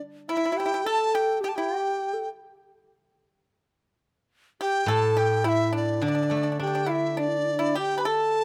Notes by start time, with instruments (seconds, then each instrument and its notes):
0.29 pipa E4, xiao E4, dizi E5
0.37 pipa E4
0.45 pipa E4
0.52 pipa E4, xiao G4
0.57 pipa E4, dizi G5
0.66 pipa E4
0.74 pipa E4
0.85 xiao A4, pipa A4, dizi A5
1.15 pipa G4, dizi G5
1.41 xiao G4, pipa G4, dizi G5
1.49 dizi A5
1.54 pipa E4, xiao G4, dizi G5
1.80 pipa G4
2.14 xiao A4
4.61 pipa G4, xiao G4, dizi G5
4.86 guzheng A2, xiao A4, pipa A4, dizi A5
5.17 pipa G4, dizi G5
5.44 pipa E4, xiao E4
5.48 dizi E5
5.73 pipa D4, dizi D5
6.01 guzheng D3, pipa D4, xiao D4, dizi D5
6.08 pipa D4
6.15 pipa D4
6.23 pipa D4
6.30 guzheng A3, pipa D4
6.37 pipa D4
6.43 pipa D4
6.52 pipa D4
6.59 guzheng D4, pipa D4, xiao G4, dizi G5
6.67 pipa D4
6.75 pipa D4
6.86 pipa E4, xiao E4
6.91 dizi E5
7.17 pipa D4, xiao D4, dizi D5
7.28 xiao E4
7.37 xiao D4
7.45 xiao E4
7.52 xiao D4
7.59 pipa E4
7.75 pipa G4, xiao G4, dizi G5
7.98 pipa B4, dizi B5
8.05 pipa A4, xiao A4, dizi A5